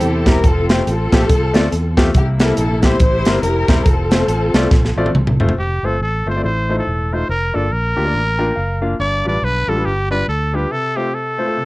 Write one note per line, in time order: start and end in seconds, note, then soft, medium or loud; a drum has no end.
0.00 0.23 E2 medium
0.00 0.23 C3 medium
0.00 0.41 C4 medium
0.00 0.41 E4 medium
0.00 0.40 G4 medium
0.00 0.28 A4 medium
0.00 closed hi-hat medium
0.26 0.41 E1 loud
0.26 0.38 G3 medium
0.26 0.38 C4 medium
0.26 0.38 E4 medium
0.26 0.38 G4 medium
0.26 0.45 A#4 medium
0.26 kick medium
0.26 snare loud
0.26 closed hi-hat medium
0.44 0.80 F1 loud
0.44 0.86 C4 medium
0.44 0.87 F4 medium
0.44 0.71 A4 medium
0.44 kick loud
0.44 closed hi-hat medium
0.69 0.80 A3 medium
0.69 0.80 C4 medium
0.69 0.80 F4 medium
0.69 0.86 G4 medium
0.69 0.81 C5 medium
0.69 snare loud
0.69 closed hi-hat medium
0.87 1.09 A1 medium
0.87 1.94 C4 medium
0.87 1.94 F4 medium
0.87 1.99 A4 loud
0.87 closed hi-hat medium
1.12 1.27 A#1 medium
1.12 1.23 A3 medium
1.12 1.23 C4 medium
1.12 1.24 F4 medium
1.12 1.24 G4 medium
1.12 kick medium
1.12 snare loud
1.12 closed hi-hat medium
1.29 1.51 C2 loud
1.29 kick loud
1.29 closed hi-hat loud
1.53 1.69 D2 medium
1.53 1.65 A3 medium
1.53 1.65 C4 medium
1.53 1.65 F4 medium
1.53 1.66 D5 loud
1.53 snare loud
1.53 closed hi-hat medium
1.72 2.09 E2 medium
1.72 closed hi-hat medium
1.97 2.08 A3 medium
1.97 2.08 C4 medium
1.97 2.08 F4 medium
1.97 2.08 G4 medium
1.97 kick medium
1.97 snare loud
1.97 closed hi-hat medium
2.14 2.51 C2 loud
2.14 2.79 C3 medium
2.14 2.97 A#3 medium
2.14 2.97 E4 medium
2.14 2.28 G4 medium
2.14 kick loud
2.14 closed hi-hat medium
2.40 2.52 G3 medium
2.40 2.52 C4 medium
2.40 2.52 E4 medium
2.40 2.57 A4 medium
2.40 2.52 A#4 medium
2.40 snare loud
2.40 closed hi-hat medium
2.57 2.94 A#1 medium
2.57 2.83 A4 medium
2.57 closed hi-hat loud
2.83 2.95 G3 medium
2.83 2.95 C4 medium
2.83 2.95 E4 medium
2.83 2.95 G4 medium
2.83 3.00 C5 medium
2.83 kick medium
2.83 snare medium
2.83 closed hi-hat medium
3.00 3.22 A1 loud
3.00 3.43 E4 medium
3.00 3.43 G4 medium
3.00 3.42 C5 loud
3.00 kick loud
3.00 closed hi-hat medium
3.25 3.41 G1 medium
3.25 3.37 G3 medium
3.25 3.37 C4 medium
3.25 3.37 E4 medium
3.25 3.38 A#4 medium
3.25 snare loud
3.25 closed hi-hat medium
3.43 3.65 F1 loud
3.43 3.84 E4 medium
3.43 3.84 G4 medium
3.43 3.87 A#4 loud
3.43 closed hi-hat medium
3.68 3.83 E1 medium
3.68 3.80 G3 medium
3.68 3.80 C4 medium
3.68 3.80 E4 medium
3.68 3.80 C5 medium
3.68 kick medium
3.68 snare loud
3.68 closed hi-hat medium
3.86 4.22 F1 loud
3.86 5.11 C4 medium
3.86 5.11 F4 medium
3.86 5.16 A4 medium
3.86 kick loud
3.86 closed hi-hat medium
4.11 4.22 A3 medium
4.11 4.22 C4 medium
4.11 4.22 F4 medium
4.11 4.23 C5 medium
4.11 snare loud
4.11 closed hi-hat medium
4.28 4.50 A1 medium
4.28 closed hi-hat medium
4.54 4.69 C2 medium
4.54 4.65 A3 medium
4.54 4.66 C4 medium
4.54 4.66 F4 medium
4.54 4.66 D5 medium
4.54 snare loud
4.54 closed hi-hat medium
4.71 4.93 A#1 medium
4.71 kick loud
4.71 snare medium
4.85 snare medium
4.96 5.11 A1 medium
4.96 5.08 A3 medium
4.96 5.08 C4 medium
4.96 5.08 F4 medium
4.96 5.08 D5 medium
5.06 high tom medium
5.14 5.36 C2 medium
5.14 mid tom medium
5.27 mid tom medium
5.40 5.55 E1 medium
5.40 5.51 A3 medium
5.40 5.51 C4 medium
5.40 5.51 F4 medium
5.40 5.51 C5 medium
5.40 floor tom medium
5.49 floor tom medium
5.58 5.79 F1 medium
5.58 5.87 G4 medium
5.83 5.97 G1 medium
5.83 5.94 A3 medium
5.83 5.94 C4 medium
5.83 5.94 F4 medium
5.83 6.01 A4 medium
5.83 5.94 C5 medium
6.00 6.22 A1 medium
6.00 6.25 A4 medium
6.26 6.40 G1 medium
6.26 6.32 A3 medium
6.26 6.31 C4 medium
6.26 6.32 F4 medium
6.26 6.32 C5 medium
6.26 6.43 C5 medium
6.36 6.44 A3 medium
6.36 6.44 C4 soft
6.36 6.44 F4 soft
6.36 6.44 D5 medium
6.44 6.80 A1 medium
6.44 7.08 A2 medium
6.44 6.75 C5 medium
6.69 6.80 A3 medium
6.69 6.80 D#4 medium
6.69 6.80 F4 medium
6.69 6.80 C5 medium
6.78 7.15 A4 medium
6.87 7.23 E1 medium
7.13 7.23 A3 medium
7.13 7.23 D#4 medium
7.13 7.23 F4 medium
7.13 7.23 C5 medium
7.13 7.30 C5 medium
7.29 7.51 F1 medium
7.29 7.56 A#4 medium
7.54 7.69 G1 medium
7.54 7.65 A#3 medium
7.54 7.65 D4 medium
7.54 7.65 F4 medium
7.54 7.74 A4 medium
7.54 7.65 D5 medium
7.71 7.93 A#1 medium
7.71 8.83 A#4 loud
7.96 8.12 D2 medium
7.96 8.02 A#3 medium
7.96 8.02 D4 medium
7.96 8.02 F4 medium
7.96 8.02 G4 medium
8.05 8.17 A#3 medium
8.05 8.17 D4 medium
8.05 8.17 F4 medium
8.05 8.17 D5 medium
8.14 8.50 A1 medium
8.39 8.50 A#3 medium
8.39 8.50 D4 medium
8.39 8.50 F4 medium
8.39 8.50 A#4 medium
8.39 8.55 G5 medium
8.56 8.94 F#1 medium
8.56 8.81 F5 medium
8.82 8.93 A#3 medium
8.82 8.93 D4 medium
8.82 8.93 F4 medium
8.82 8.93 F5 medium
8.99 9.22 G1 medium
8.99 9.64 G2 medium
8.99 9.24 D5 loud
9.25 9.40 A1 medium
9.25 9.36 G3 medium
9.25 9.36 D4 medium
9.25 9.36 F4 medium
9.25 9.36 B4 medium
9.25 9.46 D5 medium
9.42 9.64 B1 medium
9.42 9.71 B4 medium
9.68 9.83 A1 medium
9.68 9.74 G3 medium
9.68 9.74 D4 medium
9.68 9.74 F4 medium
9.68 9.74 A4 medium
9.68 9.87 A4 medium
9.76 9.89 G3 medium
9.76 9.89 D4 soft
9.76 9.89 F4 medium
9.76 9.89 B4 medium
9.85 10.22 G1 medium
9.85 10.10 G4 medium
10.11 10.22 G3 medium
10.11 10.22 D4 medium
10.11 10.22 F4 medium
10.11 10.27 B4 medium
10.11 10.22 D5 medium
10.28 10.65 D2 medium
10.28 10.56 A4 medium
10.53 10.65 G3 medium
10.53 10.65 D4 medium
10.53 10.65 F4 medium
10.53 10.73 G4 medium
10.53 10.65 B4 medium
10.71 11.36 C3 medium
10.71 10.98 A4 medium
10.96 11.08 A3 medium
10.96 11.08 C4 soft
10.96 11.08 F4 medium
10.96 11.16 G4 medium
10.96 11.08 C5 medium
11.15 11.65 A4 medium
11.38 11.45 A3 medium
11.38 11.45 C4 medium
11.38 11.45 F4 medium
11.38 11.45 C5 medium
11.47 11.56 A3 medium
11.47 11.56 C4 medium
11.47 11.57 F4 soft
11.57 11.65 C3 medium